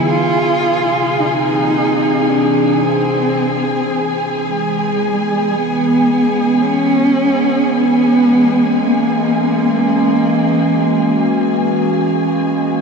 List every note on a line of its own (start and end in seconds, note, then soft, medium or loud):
0.00 0.11 D3 medium
0.00 12.81 E3 medium
0.00 10.25 G#4 medium
0.00 12.81 G#4 medium
0.00 12.81 G#5 medium
0.09 4.47 C3 medium
0.09 1.21 F4 loud
0.92 4.46 A#3 medium
0.92 4.46 C4 medium
1.19 1.27 D#4 medium
1.26 1.36 F4 medium
1.34 2.32 D#4 medium
2.30 2.84 D4 medium
2.83 3.93 C4 medium
4.48 5.57 G#3 medium
4.65 12.81 G#3 medium
4.73 8.83 B3 medium
5.55 6.63 B3 medium
5.83 12.81 C#4 medium
6.62 7.72 C#4 loud
7.71 8.83 B3 loud
8.81 12.81 E3 medium
8.81 12.10 A#3 medium
9.15 12.81 A#3 medium
10.55 12.81 F#4 medium